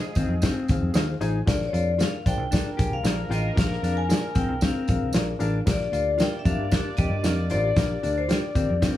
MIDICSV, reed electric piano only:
0, 0, Header, 1, 2, 480
1, 0, Start_track
1, 0, Tempo, 524934
1, 1349, Time_signature, 4, 2, 24, 8
1, 8203, End_track
2, 0, Start_track
2, 0, Title_t, "Reed electric piano"
2, 0, Program_c, 0, 4
2, 0, Note_on_c, 0, 68, 69
2, 0, Note_on_c, 0, 72, 71
2, 0, Note_on_c, 0, 77, 86
2, 92, Note_off_c, 0, 68, 0
2, 92, Note_off_c, 0, 72, 0
2, 92, Note_off_c, 0, 77, 0
2, 161, Note_on_c, 0, 63, 77
2, 163, Note_on_c, 0, 65, 68
2, 167, Note_on_c, 0, 68, 72
2, 170, Note_on_c, 0, 72, 71
2, 173, Note_on_c, 0, 77, 85
2, 334, Note_off_c, 0, 63, 0
2, 335, Note_off_c, 0, 65, 0
2, 336, Note_off_c, 0, 68, 0
2, 338, Note_off_c, 0, 72, 0
2, 339, Note_off_c, 0, 77, 0
2, 392, Note_on_c, 0, 63, 76
2, 398, Note_on_c, 0, 65, 69
2, 402, Note_on_c, 0, 68, 73
2, 403, Note_on_c, 0, 72, 73
2, 406, Note_on_c, 0, 77, 89
2, 569, Note_off_c, 0, 63, 0
2, 572, Note_off_c, 0, 65, 0
2, 574, Note_off_c, 0, 68, 0
2, 574, Note_off_c, 0, 72, 0
2, 576, Note_off_c, 0, 77, 0
2, 641, Note_on_c, 0, 63, 89
2, 643, Note_on_c, 0, 68, 86
2, 646, Note_on_c, 0, 65, 82
2, 646, Note_on_c, 0, 72, 85
2, 651, Note_on_c, 0, 77, 108
2, 813, Note_off_c, 0, 63, 0
2, 814, Note_off_c, 0, 68, 0
2, 816, Note_off_c, 0, 65, 0
2, 816, Note_off_c, 0, 72, 0
2, 819, Note_off_c, 0, 77, 0
2, 872, Note_on_c, 0, 63, 107
2, 875, Note_on_c, 0, 65, 97
2, 875, Note_on_c, 0, 68, 99
2, 879, Note_on_c, 0, 77, 125
2, 881, Note_on_c, 0, 72, 103
2, 1049, Note_off_c, 0, 63, 0
2, 1051, Note_off_c, 0, 65, 0
2, 1051, Note_off_c, 0, 68, 0
2, 1052, Note_off_c, 0, 77, 0
2, 1053, Note_off_c, 0, 72, 0
2, 1107, Note_on_c, 0, 63, 124
2, 1107, Note_on_c, 0, 68, 118
2, 1108, Note_on_c, 0, 65, 108
2, 1108, Note_on_c, 0, 72, 117
2, 1116, Note_on_c, 0, 80, 127
2, 1286, Note_off_c, 0, 63, 0
2, 1287, Note_off_c, 0, 65, 0
2, 1287, Note_off_c, 0, 68, 0
2, 1287, Note_off_c, 0, 72, 0
2, 1291, Note_off_c, 0, 80, 0
2, 1334, Note_on_c, 0, 62, 106
2, 1339, Note_on_c, 0, 65, 94
2, 1341, Note_on_c, 0, 46, 69
2, 1341, Note_on_c, 0, 68, 96
2, 1347, Note_on_c, 0, 70, 92
2, 1347, Note_on_c, 0, 77, 110
2, 1520, Note_off_c, 0, 62, 0
2, 1522, Note_off_c, 0, 65, 0
2, 1523, Note_off_c, 0, 68, 0
2, 1526, Note_off_c, 0, 77, 0
2, 1527, Note_off_c, 0, 70, 0
2, 1579, Note_on_c, 0, 62, 76
2, 1579, Note_on_c, 0, 65, 70
2, 1582, Note_on_c, 0, 68, 72
2, 1585, Note_on_c, 0, 70, 74
2, 1587, Note_on_c, 0, 77, 92
2, 1762, Note_off_c, 0, 62, 0
2, 1762, Note_off_c, 0, 65, 0
2, 1764, Note_off_c, 0, 68, 0
2, 1765, Note_off_c, 0, 70, 0
2, 1766, Note_off_c, 0, 77, 0
2, 1823, Note_on_c, 0, 65, 74
2, 1825, Note_on_c, 0, 62, 77
2, 1828, Note_on_c, 0, 68, 73
2, 1833, Note_on_c, 0, 70, 67
2, 1833, Note_on_c, 0, 77, 85
2, 2004, Note_off_c, 0, 65, 0
2, 2005, Note_off_c, 0, 62, 0
2, 2006, Note_off_c, 0, 68, 0
2, 2009, Note_off_c, 0, 70, 0
2, 2009, Note_off_c, 0, 77, 0
2, 2028, Note_off_c, 0, 46, 0
2, 2068, Note_on_c, 0, 62, 76
2, 2068, Note_on_c, 0, 65, 74
2, 2070, Note_on_c, 0, 68, 75
2, 2072, Note_on_c, 0, 70, 70
2, 2080, Note_on_c, 0, 72, 86
2, 2246, Note_off_c, 0, 62, 0
2, 2247, Note_off_c, 0, 65, 0
2, 2247, Note_off_c, 0, 68, 0
2, 2249, Note_off_c, 0, 70, 0
2, 2252, Note_off_c, 0, 72, 0
2, 2309, Note_on_c, 0, 68, 72
2, 2310, Note_on_c, 0, 65, 75
2, 2311, Note_on_c, 0, 62, 80
2, 2312, Note_on_c, 0, 70, 72
2, 2318, Note_on_c, 0, 74, 88
2, 2487, Note_off_c, 0, 68, 0
2, 2488, Note_off_c, 0, 62, 0
2, 2488, Note_off_c, 0, 65, 0
2, 2488, Note_off_c, 0, 70, 0
2, 2491, Note_off_c, 0, 74, 0
2, 2541, Note_on_c, 0, 65, 69
2, 2543, Note_on_c, 0, 62, 83
2, 2545, Note_on_c, 0, 68, 71
2, 2546, Note_on_c, 0, 70, 69
2, 2546, Note_on_c, 0, 80, 80
2, 2723, Note_off_c, 0, 65, 0
2, 2724, Note_off_c, 0, 62, 0
2, 2725, Note_off_c, 0, 68, 0
2, 2725, Note_off_c, 0, 70, 0
2, 2725, Note_off_c, 0, 80, 0
2, 2783, Note_on_c, 0, 62, 90
2, 2785, Note_on_c, 0, 65, 91
2, 2786, Note_on_c, 0, 70, 85
2, 2787, Note_on_c, 0, 68, 90
2, 2790, Note_on_c, 0, 77, 103
2, 2964, Note_off_c, 0, 62, 0
2, 2965, Note_off_c, 0, 65, 0
2, 2966, Note_off_c, 0, 68, 0
2, 2966, Note_off_c, 0, 70, 0
2, 2967, Note_off_c, 0, 77, 0
2, 3014, Note_on_c, 0, 65, 92
2, 3018, Note_on_c, 0, 62, 94
2, 3018, Note_on_c, 0, 68, 92
2, 3018, Note_on_c, 0, 70, 90
2, 3025, Note_on_c, 0, 79, 113
2, 3199, Note_off_c, 0, 65, 0
2, 3201, Note_off_c, 0, 62, 0
2, 3201, Note_off_c, 0, 68, 0
2, 3201, Note_off_c, 0, 70, 0
2, 3205, Note_off_c, 0, 79, 0
2, 3254, Note_on_c, 0, 62, 96
2, 3254, Note_on_c, 0, 65, 94
2, 3255, Note_on_c, 0, 46, 68
2, 3260, Note_on_c, 0, 68, 89
2, 3263, Note_on_c, 0, 70, 95
2, 3265, Note_on_c, 0, 77, 113
2, 3439, Note_off_c, 0, 62, 0
2, 3439, Note_off_c, 0, 65, 0
2, 3442, Note_off_c, 0, 68, 0
2, 3444, Note_off_c, 0, 70, 0
2, 3445, Note_off_c, 0, 77, 0
2, 3502, Note_on_c, 0, 62, 74
2, 3502, Note_on_c, 0, 65, 67
2, 3503, Note_on_c, 0, 68, 69
2, 3505, Note_on_c, 0, 70, 68
2, 3507, Note_on_c, 0, 77, 83
2, 3683, Note_off_c, 0, 62, 0
2, 3683, Note_off_c, 0, 65, 0
2, 3683, Note_off_c, 0, 68, 0
2, 3684, Note_off_c, 0, 70, 0
2, 3686, Note_off_c, 0, 77, 0
2, 3734, Note_on_c, 0, 62, 76
2, 3739, Note_on_c, 0, 68, 67
2, 3740, Note_on_c, 0, 65, 72
2, 3741, Note_on_c, 0, 77, 80
2, 3743, Note_on_c, 0, 70, 75
2, 3919, Note_off_c, 0, 62, 0
2, 3921, Note_off_c, 0, 68, 0
2, 3922, Note_off_c, 0, 65, 0
2, 3922, Note_off_c, 0, 77, 0
2, 3924, Note_off_c, 0, 70, 0
2, 3944, Note_off_c, 0, 46, 0
2, 3980, Note_on_c, 0, 62, 79
2, 3981, Note_on_c, 0, 65, 69
2, 3985, Note_on_c, 0, 68, 67
2, 3987, Note_on_c, 0, 70, 71
2, 3987, Note_on_c, 0, 77, 84
2, 4162, Note_off_c, 0, 62, 0
2, 4162, Note_off_c, 0, 65, 0
2, 4164, Note_off_c, 0, 68, 0
2, 4166, Note_off_c, 0, 70, 0
2, 4166, Note_off_c, 0, 77, 0
2, 4222, Note_on_c, 0, 62, 79
2, 4224, Note_on_c, 0, 68, 67
2, 4227, Note_on_c, 0, 77, 88
2, 4228, Note_on_c, 0, 65, 70
2, 4228, Note_on_c, 0, 70, 69
2, 4403, Note_off_c, 0, 62, 0
2, 4404, Note_off_c, 0, 68, 0
2, 4405, Note_off_c, 0, 77, 0
2, 4406, Note_off_c, 0, 65, 0
2, 4406, Note_off_c, 0, 70, 0
2, 4463, Note_on_c, 0, 62, 77
2, 4463, Note_on_c, 0, 65, 74
2, 4470, Note_on_c, 0, 68, 71
2, 4471, Note_on_c, 0, 70, 70
2, 4472, Note_on_c, 0, 77, 87
2, 4643, Note_off_c, 0, 62, 0
2, 4643, Note_off_c, 0, 65, 0
2, 4647, Note_off_c, 0, 68, 0
2, 4647, Note_off_c, 0, 70, 0
2, 4648, Note_off_c, 0, 77, 0
2, 4697, Note_on_c, 0, 62, 92
2, 4699, Note_on_c, 0, 68, 91
2, 4704, Note_on_c, 0, 70, 87
2, 4705, Note_on_c, 0, 65, 85
2, 4709, Note_on_c, 0, 74, 104
2, 4880, Note_off_c, 0, 62, 0
2, 4881, Note_off_c, 0, 68, 0
2, 4884, Note_off_c, 0, 65, 0
2, 4884, Note_off_c, 0, 70, 0
2, 4886, Note_off_c, 0, 74, 0
2, 4930, Note_on_c, 0, 62, 117
2, 4933, Note_on_c, 0, 65, 104
2, 4938, Note_on_c, 0, 68, 108
2, 4938, Note_on_c, 0, 70, 109
2, 4942, Note_on_c, 0, 77, 127
2, 5116, Note_off_c, 0, 62, 0
2, 5118, Note_off_c, 0, 65, 0
2, 5121, Note_off_c, 0, 68, 0
2, 5121, Note_off_c, 0, 70, 0
2, 5123, Note_off_c, 0, 77, 0
2, 5175, Note_on_c, 0, 62, 96
2, 5177, Note_on_c, 0, 65, 98
2, 5177, Note_on_c, 0, 70, 92
2, 5179, Note_on_c, 0, 67, 88
2, 5182, Note_on_c, 0, 46, 71
2, 5184, Note_on_c, 0, 77, 113
2, 5359, Note_off_c, 0, 62, 0
2, 5360, Note_off_c, 0, 65, 0
2, 5360, Note_off_c, 0, 70, 0
2, 5361, Note_off_c, 0, 67, 0
2, 5363, Note_off_c, 0, 77, 0
2, 5412, Note_on_c, 0, 62, 79
2, 5416, Note_on_c, 0, 65, 66
2, 5420, Note_on_c, 0, 67, 74
2, 5422, Note_on_c, 0, 70, 68
2, 5426, Note_on_c, 0, 77, 85
2, 5597, Note_off_c, 0, 62, 0
2, 5600, Note_off_c, 0, 65, 0
2, 5602, Note_off_c, 0, 67, 0
2, 5603, Note_off_c, 0, 70, 0
2, 5604, Note_off_c, 0, 77, 0
2, 5661, Note_on_c, 0, 62, 73
2, 5663, Note_on_c, 0, 67, 71
2, 5664, Note_on_c, 0, 65, 70
2, 5666, Note_on_c, 0, 77, 82
2, 5668, Note_on_c, 0, 70, 70
2, 5842, Note_off_c, 0, 62, 0
2, 5843, Note_off_c, 0, 65, 0
2, 5843, Note_off_c, 0, 67, 0
2, 5845, Note_off_c, 0, 77, 0
2, 5846, Note_off_c, 0, 70, 0
2, 5867, Note_off_c, 0, 46, 0
2, 5905, Note_on_c, 0, 62, 73
2, 5905, Note_on_c, 0, 65, 68
2, 5906, Note_on_c, 0, 67, 67
2, 5912, Note_on_c, 0, 70, 69
2, 5915, Note_on_c, 0, 77, 89
2, 6084, Note_off_c, 0, 62, 0
2, 6084, Note_off_c, 0, 65, 0
2, 6085, Note_off_c, 0, 67, 0
2, 6087, Note_off_c, 0, 70, 0
2, 6089, Note_off_c, 0, 77, 0
2, 6128, Note_on_c, 0, 62, 76
2, 6133, Note_on_c, 0, 67, 69
2, 6136, Note_on_c, 0, 65, 74
2, 6139, Note_on_c, 0, 70, 70
2, 6141, Note_on_c, 0, 77, 88
2, 6315, Note_off_c, 0, 62, 0
2, 6318, Note_off_c, 0, 67, 0
2, 6319, Note_off_c, 0, 65, 0
2, 6321, Note_off_c, 0, 70, 0
2, 6322, Note_off_c, 0, 77, 0
2, 6380, Note_on_c, 0, 62, 80
2, 6386, Note_on_c, 0, 65, 69
2, 6386, Note_on_c, 0, 67, 65
2, 6392, Note_on_c, 0, 70, 69
2, 6392, Note_on_c, 0, 77, 82
2, 6561, Note_off_c, 0, 62, 0
2, 6564, Note_off_c, 0, 65, 0
2, 6564, Note_off_c, 0, 67, 0
2, 6567, Note_off_c, 0, 70, 0
2, 6567, Note_off_c, 0, 77, 0
2, 6630, Note_on_c, 0, 65, 86
2, 6633, Note_on_c, 0, 62, 98
2, 6633, Note_on_c, 0, 67, 81
2, 6636, Note_on_c, 0, 70, 86
2, 6641, Note_on_c, 0, 77, 109
2, 6806, Note_off_c, 0, 65, 0
2, 6808, Note_off_c, 0, 62, 0
2, 6808, Note_off_c, 0, 67, 0
2, 6809, Note_off_c, 0, 70, 0
2, 6812, Note_off_c, 0, 77, 0
2, 6859, Note_on_c, 0, 62, 101
2, 6867, Note_on_c, 0, 67, 87
2, 6868, Note_on_c, 0, 65, 87
2, 6869, Note_on_c, 0, 72, 112
2, 6872, Note_on_c, 0, 70, 95
2, 7040, Note_off_c, 0, 62, 0
2, 7044, Note_off_c, 0, 67, 0
2, 7045, Note_off_c, 0, 65, 0
2, 7046, Note_off_c, 0, 72, 0
2, 7047, Note_off_c, 0, 70, 0
2, 7104, Note_on_c, 0, 65, 90
2, 7110, Note_on_c, 0, 62, 99
2, 7110, Note_on_c, 0, 67, 96
2, 7115, Note_on_c, 0, 46, 72
2, 7115, Note_on_c, 0, 70, 95
2, 7117, Note_on_c, 0, 77, 115
2, 7283, Note_off_c, 0, 65, 0
2, 7286, Note_off_c, 0, 62, 0
2, 7286, Note_off_c, 0, 67, 0
2, 7288, Note_off_c, 0, 70, 0
2, 7289, Note_off_c, 0, 77, 0
2, 7339, Note_on_c, 0, 65, 69
2, 7342, Note_on_c, 0, 62, 74
2, 7342, Note_on_c, 0, 67, 74
2, 7347, Note_on_c, 0, 77, 93
2, 7349, Note_on_c, 0, 70, 70
2, 7521, Note_off_c, 0, 65, 0
2, 7522, Note_off_c, 0, 62, 0
2, 7522, Note_off_c, 0, 67, 0
2, 7525, Note_off_c, 0, 77, 0
2, 7526, Note_off_c, 0, 70, 0
2, 7574, Note_on_c, 0, 62, 78
2, 7574, Note_on_c, 0, 65, 69
2, 7578, Note_on_c, 0, 67, 67
2, 7579, Note_on_c, 0, 70, 73
2, 7584, Note_on_c, 0, 79, 87
2, 7758, Note_off_c, 0, 62, 0
2, 7758, Note_off_c, 0, 65, 0
2, 7760, Note_off_c, 0, 67, 0
2, 7760, Note_off_c, 0, 70, 0
2, 7763, Note_off_c, 0, 79, 0
2, 7793, Note_off_c, 0, 46, 0
2, 7818, Note_on_c, 0, 65, 70
2, 7819, Note_on_c, 0, 62, 76
2, 7821, Note_on_c, 0, 67, 72
2, 7825, Note_on_c, 0, 70, 72
2, 7826, Note_on_c, 0, 77, 86
2, 8000, Note_off_c, 0, 65, 0
2, 8001, Note_off_c, 0, 62, 0
2, 8002, Note_off_c, 0, 67, 0
2, 8003, Note_off_c, 0, 70, 0
2, 8004, Note_off_c, 0, 77, 0
2, 8059, Note_on_c, 0, 62, 79
2, 8065, Note_on_c, 0, 65, 72
2, 8070, Note_on_c, 0, 67, 71
2, 8072, Note_on_c, 0, 70, 67
2, 8072, Note_on_c, 0, 77, 88
2, 8203, Note_off_c, 0, 62, 0
2, 8203, Note_off_c, 0, 65, 0
2, 8203, Note_off_c, 0, 67, 0
2, 8203, Note_off_c, 0, 70, 0
2, 8203, Note_off_c, 0, 77, 0
2, 8203, End_track
0, 0, End_of_file